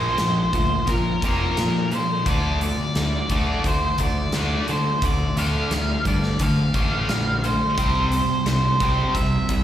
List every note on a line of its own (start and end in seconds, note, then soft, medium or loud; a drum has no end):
0.00 0.17 A#2 medium
0.00 0.17 F3 medium
0.00 0.17 A#3 medium
0.00 0.87 C5 medium
0.18 0.41 A#1 medium
0.18 0.50 A#2 medium
0.18 0.51 F3 medium
0.18 snare medium
0.18 closed hi-hat medium
0.53 0.75 D2 medium
0.53 0.85 A#2 medium
0.53 0.85 F3 medium
0.53 kick medium
0.53 closed hi-hat medium
0.87 1.09 A#2 medium
0.87 1.20 A#2 medium
0.87 1.20 F3 medium
0.87 1.20 A#4 medium
0.87 kick medium
0.87 closed hi-hat medium
1.22 1.44 F1 medium
1.22 1.56 A#2 medium
1.22 1.56 F3 medium
1.22 1.56 A#3 medium
1.22 1.94 A#4 medium
1.22 kick medium
1.22 closed hi-hat medium
1.57 2.00 A#2 medium
1.57 1.89 A#2 medium
1.57 1.89 F3 medium
1.57 snare loud
1.57 closed hi-hat medium
1.91 2.23 A#2 medium
1.91 2.23 F3 medium
1.91 2.25 C5 medium
1.91 closed hi-hat soft
2.26 2.69 D2 medium
2.26 2.59 D3 medium
2.26 2.60 A3 medium
2.26 2.60 D4 medium
2.26 2.62 D5 medium
2.26 kick loud
2.26 closed hi-hat medium
2.61 2.92 D3 medium
2.61 2.93 A3 medium
2.61 3.62 D5 medium
2.61 closed hi-hat medium
2.95 3.17 D2 medium
2.95 3.27 D3 medium
2.95 3.27 A3 medium
2.95 snare medium
2.95 closed hi-hat medium
3.29 3.51 D2 medium
3.29 3.63 D3 medium
3.29 3.63 A3 medium
3.29 3.63 D4 medium
3.29 kick medium
3.29 closed hi-hat medium
3.64 3.86 D2 medium
3.64 3.96 D3 medium
3.64 3.96 A3 medium
3.64 3.98 C5 medium
3.64 kick medium
3.64 closed hi-hat medium
3.98 4.20 D2 medium
3.98 4.30 D3 medium
3.98 4.30 A3 medium
3.98 kick medium
3.98 closed hi-hat medium
4.03 4.66 D5 loud
4.32 4.55 D2 medium
4.32 4.66 D3 medium
4.32 4.67 A3 medium
4.32 4.67 D4 medium
4.32 snare loud
4.32 closed hi-hat medium
4.68 4.99 D3 medium
4.68 4.90 D3 medium
4.68 5.00 A3 medium
4.68 5.05 C5 medium
4.68 closed hi-hat medium
5.02 5.23 D2 medium
5.02 5.34 D3 medium
5.02 5.34 A3 medium
5.02 5.38 D5 medium
5.02 kick loud
5.02 closed hi-hat medium
5.36 5.58 D2 medium
5.36 5.70 D3 medium
5.36 5.70 A3 medium
5.36 5.70 D4 medium
5.36 6.03 F5 medium
5.36 closed hi-hat medium
5.71 5.92 D2 medium
5.71 6.03 D3 medium
5.71 6.03 A3 medium
5.71 snare medium
5.71 closed hi-hat medium
6.05 6.27 G2 medium
6.05 6.37 D3 soft
6.05 6.37 A3 medium
6.05 6.42 D5 medium
6.05 kick medium
6.05 closed hi-hat medium
6.23 snare soft
6.39 6.61 D3 medium
6.39 6.71 D3 medium
6.39 6.72 A3 medium
6.39 7.41 F5 medium
6.39 kick medium
6.39 closed hi-hat medium
6.74 6.95 A1 medium
6.74 7.07 D3 medium
6.74 7.07 A3 medium
6.74 7.07 D4 medium
6.74 kick medium
6.74 closed hi-hat soft
7.08 7.51 A#1 medium
7.08 7.40 D3 medium
7.08 7.40 A3 medium
7.08 snare loud
7.08 closed hi-hat medium
7.44 7.75 D3 medium
7.44 7.75 A3 medium
7.44 8.47 C5 medium
7.44 closed hi-hat soft
7.77 8.20 C2 medium
7.77 8.10 C3 medium
7.77 8.10 G3 medium
7.77 8.10 C4 medium
7.77 kick medium
7.77 closed hi-hat medium
8.12 8.43 C3 medium
8.12 8.43 G3 medium
8.12 closed hi-hat medium
8.46 8.67 C2 medium
8.46 8.77 C3 medium
8.46 8.77 G3 medium
8.46 9.12 C5 medium
8.46 snare medium
8.46 closed hi-hat medium
8.80 9.02 C2 medium
8.80 9.13 C3 medium
8.80 9.14 G3 medium
8.80 9.14 C4 medium
8.80 kick medium
8.80 closed hi-hat medium
9.14 9.37 C2 medium
9.14 9.46 C3 medium
9.14 9.46 G3 medium
9.14 9.64 E5 medium
9.14 kick medium
9.14 closed hi-hat medium
9.49 9.64 C2 medium
9.49 9.64 C3 medium
9.49 9.64 G3 medium
9.49 kick medium
9.49 closed hi-hat medium